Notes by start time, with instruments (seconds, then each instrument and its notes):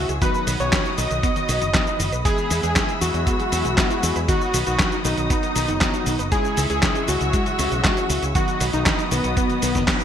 Already playing: analog polysynth G#3 C#4 E4 G#4, analog synth lead F#4, string section G#4 E5 C#6 E6
0.09 fingered electric bass C#2, synth arpeggio sound G#4, closed hi-hat, cabasa
0.21 synth arpeggio sound D#3, analog polysynth F#3 B3 D#4 F#4, string section F#4 D#5 B5 D#6, analog synth lead B4, kick, closed hi-hat, cabasa
0.34 synth arpeggio sound D#3, cabasa
0.47 fingered electric bass B1, synth arpeggio sound D#3, open hi-hat, cabasa
0.60 fingered electric bass B1, synth arpeggio sound D#3, analog polysynth F#3 B3 D#4 F#4, analog synth lead C#5, closed hi-hat, cabasa
0.73 synth arpeggio sound D#3, kick, snare, clap, closed hi-hat, cabasa
0.85 synth arpeggio sound D#4, closed hi-hat, cabasa
0.98 fingered electric bass B1, synth arpeggio sound D#3, analog synth lead D#5, open hi-hat, cabasa
1.11 fingered electric bass B1, synth arpeggio sound D#3, closed hi-hat, cabasa
1.23 synth arpeggio sound B3, kick, closed hi-hat, cabasa
1.36 synth arpeggio sound D#3, closed hi-hat, cabasa
1.49 fingered electric bass B1, synth arpeggio sound D#3, open hi-hat, cabasa
1.62 fingered electric bass F#1, synth arpeggio sound D#3, closed hi-hat, cabasa
1.74 synth arpeggio sound B3, kick, snare, clap, closed hi-hat, cabasa
1.87 synth arpeggio sound D#4, closed hi-hat, cabasa
2.00 fingered electric bass F#1, synth arpeggio sound D#3, open hi-hat, cabasa
2.12 fingered electric bass B1, synth arpeggio sound B4, closed hi-hat, cabasa
2.25 synth arpeggio sound E3, analog polysynth G#3 B3 E4 G#4, string section G#4 E5 E6, analog synth lead G#4, kick, closed hi-hat, cabasa
2.38 synth arpeggio sound E3, cabasa
2.50 fingered electric bass E2, synth arpeggio sound E3, open hi-hat, cabasa
2.63 fingered electric bass E2, synth arpeggio sound E3, analog polysynth G#3 B3 E4 G#4, analog synth lead G#4, closed hi-hat, cabasa
2.76 synth arpeggio sound E3, kick, snare, clap, closed hi-hat, cabasa
2.89 synth arpeggio sound E4, closed hi-hat, cabasa
3.01 fingered electric bass E2, synth arpeggio sound E3, analog synth lead F#4, open hi-hat, cabasa
3.14 fingered electric bass E2, synth arpeggio sound E3, closed hi-hat, cabasa
3.27 synth arpeggio sound B3, kick, closed hi-hat, cabasa
3.40 synth arpeggio sound E3, closed hi-hat, cabasa
3.52 fingered electric bass E2, synth arpeggio sound E3, open hi-hat, cabasa
3.65 fingered electric bass B1, synth arpeggio sound E3, closed hi-hat, cabasa
3.78 synth arpeggio sound B3, kick, snare, clap, closed hi-hat, cabasa
3.90 synth arpeggio sound E4, closed hi-hat, cabasa
4.03 fingered electric bass E2, synth arpeggio sound E3, open hi-hat, cabasa
4.16 fingered electric bass E2, synth arpeggio sound B4, closed hi-hat, cabasa
4.28 synth arpeggio sound D#3, analog polysynth F#3 B3 D#4 F#4, analog synth lead F#4, string section F#4 D#5 D#6, kick, closed hi-hat, cabasa
4.41 synth arpeggio sound D#3, cabasa
4.54 fingered electric bass B1, synth arpeggio sound D#3, open hi-hat, cabasa
4.67 fingered electric bass B1, synth arpeggio sound D#3, analog polysynth F#3 B3 D#4 F#4, analog synth lead F#4, closed hi-hat, cabasa
4.79 synth arpeggio sound D#3, kick, snare, clap, closed hi-hat, cabasa
4.92 synth arpeggio sound D#4, closed hi-hat, cabasa
5.05 fingered electric bass B1, synth arpeggio sound D#3, analog synth lead D#4, open hi-hat, cabasa
5.17 fingered electric bass B1, synth arpeggio sound D#3, closed hi-hat, cabasa
5.30 synth arpeggio sound B3, kick, closed hi-hat, cabasa
5.43 synth arpeggio sound D#3, closed hi-hat, cabasa
5.56 fingered electric bass B1, synth arpeggio sound D#3, open hi-hat, cabasa
5.68 fingered electric bass F#1, synth arpeggio sound D#3, analog polysynth F#3 B3 D#4 F#4, closed hi-hat, cabasa
5.81 analog polysynth F#3 B3 D#4 F#4, synth arpeggio sound B3, kick, snare, clap, closed hi-hat, cabasa
5.94 synth arpeggio sound D#4, closed hi-hat, cabasa
6.06 fingered electric bass B1, synth arpeggio sound D#3, open hi-hat, cabasa
6.19 fingered electric bass F#1, synth arpeggio sound B4, closed hi-hat, cabasa
6.32 synth arpeggio sound C#3, analog polysynth G#3 C#4 E4 G#4, analog synth lead G#4, string section G#4 E5 C#6 E6, kick, closed hi-hat, cabasa
6.45 synth arpeggio sound C#3, cabasa
6.57 fingered electric bass C#2, synth arpeggio sound C#3, open hi-hat, cabasa
6.70 fingered electric bass C#2, synth arpeggio sound C#3, analog polysynth G#3 C#4 E4 G#4, analog synth lead G#4, closed hi-hat, cabasa
6.83 synth arpeggio sound C#3, kick, snare, clap, closed hi-hat, cabasa
6.95 synth arpeggio sound C#4, closed hi-hat, cabasa
7.08 fingered electric bass C#2, synth arpeggio sound C#3, analog synth lead F#4, open hi-hat, cabasa
7.21 fingered electric bass C#2, synth arpeggio sound C#3, closed hi-hat, cabasa
7.33 synth arpeggio sound G#3, kick, closed hi-hat, cabasa
7.46 synth arpeggio sound C#3, closed hi-hat, cabasa
7.59 fingered electric bass C#2, synth arpeggio sound C#3, open hi-hat, cabasa
7.72 fingered electric bass B1, synth arpeggio sound C#3, closed hi-hat, cabasa
7.84 synth arpeggio sound G#3, kick, snare, clap, closed hi-hat, cabasa
7.97 synth arpeggio sound C#4, closed hi-hat, cabasa
8.10 fingered electric bass C#2, synth arpeggio sound C#3, open hi-hat, cabasa
8.22 fingered electric bass C#2, synth arpeggio sound G#4, closed hi-hat, cabasa
8.35 synth arpeggio sound D#3, analog polysynth F#3 B3 D#4 F#4, string section F#4 D#5 B5 D#6, analog synth lead F#4, kick, closed hi-hat, cabasa
8.48 synth arpeggio sound D#3, closed hi-hat, cabasa
8.61 fingered electric bass B1, synth arpeggio sound D#3, open hi-hat, cabasa
8.73 fingered electric bass B1, synth arpeggio sound D#3, analog polysynth F#3 B3 D#4 F#4, analog synth lead D#4, closed hi-hat, cabasa
8.86 synth arpeggio sound D#3, kick, snare, clap, closed hi-hat, cabasa
8.99 synth arpeggio sound D#4, closed hi-hat, cabasa
9.11 fingered electric bass B1, synth arpeggio sound D#3, analog synth lead B3, open hi-hat, cabasa
9.24 fingered electric bass B1, synth arpeggio sound D#3, closed hi-hat, cabasa
9.37 synth arpeggio sound B3, kick, closed hi-hat, cabasa
9.50 synth arpeggio sound D#3, closed hi-hat, cabasa
9.62 fingered electric bass B1, synth arpeggio sound D#3, open hi-hat, cabasa
9.75 fingered electric bass F#1, synth arpeggio sound D#3, kick, snare, closed hi-hat, cabasa
9.88 synth arpeggio sound B3, kick, snare, clap, closed hi-hat, cabasa
10.00 synth arpeggio sound D#4, closed hi-hat, cabasa